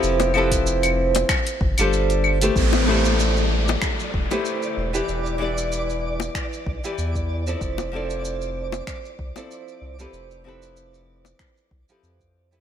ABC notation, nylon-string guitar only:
X:1
M:4/4
L:1/16
Q:"Swing 16ths" 1/4=95
K:Am
V:1 name="Nylon-string guitar"
[F,CEGAB]2 [F,CEGAB]6 z3 [G,DFAc]4 [A,EGBc]- | [A,EGBc]2 [A,EGBc]8- [A,EGBc] [A,EGBc]4 [E,EGBd]- | [E,EGBd]2 [E,EGBd]8- [E,EGBd] [E,EGBd]4 [F,CEAd]- | [F,CEAd]2 [F,CEAd]8- [F,CEAd] [F,CEAd]4 [F,CEGAB]- |
[F,CEGAB]2 [F,CEGAB]8- [F,CEGAB] [F,CEGAB]4 [F,CEGAB] |]